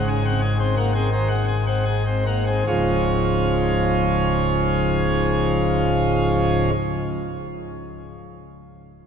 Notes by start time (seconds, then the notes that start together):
Already playing: G#1 G#2
0.09 G#5
0.25 C4 F#5
0.41 G#4
0.60 C4 C5
0.77 A#3 F#5
0.94 C4 G#4
1.12 D#3 C5
1.28 F#5
1.48 G#5
1.66 C4 F#5
1.86 G#4
2.07 C4 C5
2.26 A#3 F#5
2.47 C4 G#4
2.67 C#1 C#2 G#2 F3 G#3 C#4 F4